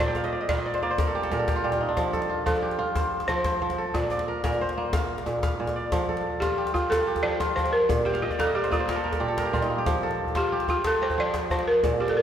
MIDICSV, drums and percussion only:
0, 0, Header, 1, 2, 480
1, 0, Start_track
1, 0, Tempo, 328947
1, 2875, Time_signature, 12, 3, 24, 8
1, 17831, End_track
2, 0, Start_track
2, 0, Title_t, "Djembe"
2, 218, Note_on_c, 9, 62, 21
2, 218, Note_on_c, 9, 63, 65
2, 345, Note_off_c, 9, 62, 0
2, 345, Note_on_c, 9, 62, 47
2, 364, Note_off_c, 9, 63, 0
2, 491, Note_off_c, 9, 62, 0
2, 714, Note_on_c, 9, 62, 66
2, 714, Note_on_c, 9, 64, 65
2, 833, Note_on_c, 9, 63, 51
2, 860, Note_off_c, 9, 62, 0
2, 860, Note_off_c, 9, 64, 0
2, 979, Note_off_c, 9, 63, 0
2, 1078, Note_on_c, 9, 62, 46
2, 1197, Note_off_c, 9, 62, 0
2, 1197, Note_on_c, 9, 62, 21
2, 1314, Note_off_c, 9, 62, 0
2, 1314, Note_on_c, 9, 62, 21
2, 1436, Note_off_c, 9, 62, 0
2, 1436, Note_on_c, 9, 62, 66
2, 1436, Note_on_c, 9, 63, 65
2, 1436, Note_on_c, 9, 64, 70
2, 1582, Note_off_c, 9, 62, 0
2, 1582, Note_off_c, 9, 63, 0
2, 1582, Note_off_c, 9, 64, 0
2, 1800, Note_on_c, 9, 62, 48
2, 1919, Note_on_c, 9, 63, 66
2, 1946, Note_off_c, 9, 62, 0
2, 2065, Note_off_c, 9, 63, 0
2, 2157, Note_on_c, 9, 62, 65
2, 2157, Note_on_c, 9, 64, 60
2, 2271, Note_off_c, 9, 62, 0
2, 2271, Note_on_c, 9, 62, 19
2, 2303, Note_off_c, 9, 64, 0
2, 2416, Note_off_c, 9, 62, 0
2, 2509, Note_on_c, 9, 62, 48
2, 2509, Note_on_c, 9, 63, 50
2, 2637, Note_off_c, 9, 62, 0
2, 2637, Note_on_c, 9, 62, 20
2, 2655, Note_off_c, 9, 63, 0
2, 2783, Note_off_c, 9, 62, 0
2, 2875, Note_on_c, 9, 62, 58
2, 2875, Note_on_c, 9, 64, 58
2, 3021, Note_off_c, 9, 62, 0
2, 3021, Note_off_c, 9, 64, 0
2, 3115, Note_on_c, 9, 62, 20
2, 3115, Note_on_c, 9, 63, 61
2, 3237, Note_off_c, 9, 62, 0
2, 3237, Note_on_c, 9, 62, 46
2, 3260, Note_off_c, 9, 63, 0
2, 3383, Note_off_c, 9, 62, 0
2, 3600, Note_on_c, 9, 62, 66
2, 3600, Note_on_c, 9, 64, 64
2, 3723, Note_on_c, 9, 63, 50
2, 3746, Note_off_c, 9, 62, 0
2, 3746, Note_off_c, 9, 64, 0
2, 3869, Note_off_c, 9, 63, 0
2, 3958, Note_on_c, 9, 62, 46
2, 4076, Note_off_c, 9, 62, 0
2, 4076, Note_on_c, 9, 62, 19
2, 4198, Note_off_c, 9, 62, 0
2, 4198, Note_on_c, 9, 62, 22
2, 4312, Note_off_c, 9, 62, 0
2, 4312, Note_on_c, 9, 62, 67
2, 4312, Note_on_c, 9, 63, 67
2, 4312, Note_on_c, 9, 64, 70
2, 4458, Note_off_c, 9, 62, 0
2, 4458, Note_off_c, 9, 63, 0
2, 4458, Note_off_c, 9, 64, 0
2, 4671, Note_on_c, 9, 62, 51
2, 4787, Note_on_c, 9, 63, 63
2, 4817, Note_off_c, 9, 62, 0
2, 4933, Note_off_c, 9, 63, 0
2, 5026, Note_on_c, 9, 62, 65
2, 5026, Note_on_c, 9, 64, 68
2, 5150, Note_off_c, 9, 62, 0
2, 5150, Note_on_c, 9, 62, 21
2, 5172, Note_off_c, 9, 64, 0
2, 5296, Note_off_c, 9, 62, 0
2, 5396, Note_on_c, 9, 62, 53
2, 5396, Note_on_c, 9, 63, 50
2, 5518, Note_off_c, 9, 62, 0
2, 5518, Note_on_c, 9, 62, 21
2, 5542, Note_off_c, 9, 63, 0
2, 5664, Note_off_c, 9, 62, 0
2, 5758, Note_on_c, 9, 62, 63
2, 5758, Note_on_c, 9, 64, 62
2, 5904, Note_off_c, 9, 62, 0
2, 5904, Note_off_c, 9, 64, 0
2, 5985, Note_on_c, 9, 63, 71
2, 6117, Note_on_c, 9, 62, 51
2, 6131, Note_off_c, 9, 63, 0
2, 6263, Note_off_c, 9, 62, 0
2, 6476, Note_on_c, 9, 62, 72
2, 6476, Note_on_c, 9, 64, 71
2, 6604, Note_on_c, 9, 63, 52
2, 6622, Note_off_c, 9, 62, 0
2, 6622, Note_off_c, 9, 64, 0
2, 6750, Note_off_c, 9, 63, 0
2, 6843, Note_on_c, 9, 62, 49
2, 6989, Note_off_c, 9, 62, 0
2, 7194, Note_on_c, 9, 62, 76
2, 7194, Note_on_c, 9, 63, 68
2, 7194, Note_on_c, 9, 64, 74
2, 7329, Note_off_c, 9, 62, 0
2, 7329, Note_on_c, 9, 62, 21
2, 7340, Note_off_c, 9, 63, 0
2, 7340, Note_off_c, 9, 64, 0
2, 7475, Note_off_c, 9, 62, 0
2, 7560, Note_on_c, 9, 62, 52
2, 7681, Note_on_c, 9, 63, 76
2, 7706, Note_off_c, 9, 62, 0
2, 7827, Note_off_c, 9, 63, 0
2, 7922, Note_on_c, 9, 62, 68
2, 7922, Note_on_c, 9, 64, 67
2, 8068, Note_off_c, 9, 62, 0
2, 8068, Note_off_c, 9, 64, 0
2, 8165, Note_on_c, 9, 62, 22
2, 8279, Note_off_c, 9, 62, 0
2, 8279, Note_on_c, 9, 62, 56
2, 8279, Note_on_c, 9, 63, 56
2, 8400, Note_off_c, 9, 62, 0
2, 8400, Note_on_c, 9, 62, 23
2, 8425, Note_off_c, 9, 63, 0
2, 8546, Note_off_c, 9, 62, 0
2, 8639, Note_on_c, 9, 62, 65
2, 8639, Note_on_c, 9, 63, 71
2, 8639, Note_on_c, 9, 64, 65
2, 8785, Note_off_c, 9, 62, 0
2, 8785, Note_off_c, 9, 63, 0
2, 8785, Note_off_c, 9, 64, 0
2, 9002, Note_on_c, 9, 62, 49
2, 9147, Note_off_c, 9, 62, 0
2, 9369, Note_on_c, 9, 62, 68
2, 9369, Note_on_c, 9, 63, 68
2, 9514, Note_off_c, 9, 62, 0
2, 9514, Note_off_c, 9, 63, 0
2, 9729, Note_on_c, 9, 62, 51
2, 9846, Note_on_c, 9, 64, 66
2, 9875, Note_off_c, 9, 62, 0
2, 9992, Note_off_c, 9, 64, 0
2, 10096, Note_on_c, 9, 62, 75
2, 10096, Note_on_c, 9, 63, 78
2, 10242, Note_off_c, 9, 62, 0
2, 10242, Note_off_c, 9, 63, 0
2, 10446, Note_on_c, 9, 62, 53
2, 10446, Note_on_c, 9, 64, 54
2, 10591, Note_off_c, 9, 62, 0
2, 10591, Note_off_c, 9, 64, 0
2, 10804, Note_on_c, 9, 62, 66
2, 10804, Note_on_c, 9, 63, 66
2, 10950, Note_off_c, 9, 62, 0
2, 10950, Note_off_c, 9, 63, 0
2, 11055, Note_on_c, 9, 64, 61
2, 11172, Note_on_c, 9, 62, 53
2, 11201, Note_off_c, 9, 64, 0
2, 11318, Note_off_c, 9, 62, 0
2, 11522, Note_on_c, 9, 62, 63
2, 11522, Note_on_c, 9, 63, 68
2, 11522, Note_on_c, 9, 64, 72
2, 11668, Note_off_c, 9, 62, 0
2, 11668, Note_off_c, 9, 63, 0
2, 11668, Note_off_c, 9, 64, 0
2, 11890, Note_on_c, 9, 62, 54
2, 12036, Note_off_c, 9, 62, 0
2, 12117, Note_on_c, 9, 64, 51
2, 12252, Note_on_c, 9, 62, 71
2, 12252, Note_on_c, 9, 63, 69
2, 12263, Note_off_c, 9, 64, 0
2, 12398, Note_off_c, 9, 62, 0
2, 12398, Note_off_c, 9, 63, 0
2, 12608, Note_on_c, 9, 62, 49
2, 12727, Note_on_c, 9, 64, 61
2, 12753, Note_off_c, 9, 62, 0
2, 12873, Note_off_c, 9, 64, 0
2, 12969, Note_on_c, 9, 62, 73
2, 12969, Note_on_c, 9, 63, 67
2, 13115, Note_off_c, 9, 62, 0
2, 13115, Note_off_c, 9, 63, 0
2, 13316, Note_on_c, 9, 62, 54
2, 13316, Note_on_c, 9, 64, 48
2, 13462, Note_off_c, 9, 62, 0
2, 13462, Note_off_c, 9, 64, 0
2, 13685, Note_on_c, 9, 62, 67
2, 13685, Note_on_c, 9, 63, 64
2, 13831, Note_off_c, 9, 62, 0
2, 13831, Note_off_c, 9, 63, 0
2, 13918, Note_on_c, 9, 64, 58
2, 14044, Note_on_c, 9, 62, 52
2, 14064, Note_off_c, 9, 64, 0
2, 14190, Note_off_c, 9, 62, 0
2, 14394, Note_on_c, 9, 62, 64
2, 14394, Note_on_c, 9, 63, 63
2, 14394, Note_on_c, 9, 64, 60
2, 14539, Note_off_c, 9, 62, 0
2, 14539, Note_off_c, 9, 63, 0
2, 14539, Note_off_c, 9, 64, 0
2, 14749, Note_on_c, 9, 62, 43
2, 14895, Note_off_c, 9, 62, 0
2, 14988, Note_on_c, 9, 64, 45
2, 15103, Note_on_c, 9, 62, 68
2, 15103, Note_on_c, 9, 63, 66
2, 15134, Note_off_c, 9, 64, 0
2, 15249, Note_off_c, 9, 62, 0
2, 15249, Note_off_c, 9, 63, 0
2, 15468, Note_on_c, 9, 62, 45
2, 15585, Note_on_c, 9, 64, 60
2, 15614, Note_off_c, 9, 62, 0
2, 15731, Note_off_c, 9, 64, 0
2, 15823, Note_on_c, 9, 62, 69
2, 15823, Note_on_c, 9, 63, 63
2, 15969, Note_off_c, 9, 62, 0
2, 15969, Note_off_c, 9, 63, 0
2, 16196, Note_on_c, 9, 64, 50
2, 16342, Note_off_c, 9, 64, 0
2, 16545, Note_on_c, 9, 62, 63
2, 16545, Note_on_c, 9, 63, 64
2, 16691, Note_off_c, 9, 62, 0
2, 16691, Note_off_c, 9, 63, 0
2, 16787, Note_on_c, 9, 64, 66
2, 16909, Note_on_c, 9, 62, 50
2, 16933, Note_off_c, 9, 64, 0
2, 17055, Note_off_c, 9, 62, 0
2, 17272, Note_on_c, 9, 62, 64
2, 17272, Note_on_c, 9, 63, 63
2, 17272, Note_on_c, 9, 64, 61
2, 17417, Note_off_c, 9, 62, 0
2, 17417, Note_off_c, 9, 63, 0
2, 17417, Note_off_c, 9, 64, 0
2, 17627, Note_on_c, 9, 62, 49
2, 17773, Note_off_c, 9, 62, 0
2, 17831, End_track
0, 0, End_of_file